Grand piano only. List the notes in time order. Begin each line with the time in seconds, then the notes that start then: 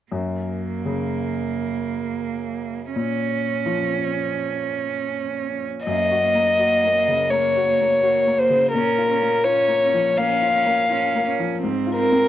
0.12 F#2
0.85 C#3
2.96 A#2
3.66 F3
5.87 F#2
6.11 F#4
6.34 A#3
6.59 F#4
6.84 A#3
7.08 C#3
7.32 A#3
7.56 F#4
7.81 A#3
8.03 F#4
8.27 A#3
8.50 C#3
8.74 A#2
8.98 F4
9.22 A#3
9.45 F4
9.68 A#3
9.94 F3
10.17 A#3
10.42 F4
10.65 A#3
10.90 F4
11.15 A#3
11.39 F3
11.63 G#2
11.87 F4
12.12 C4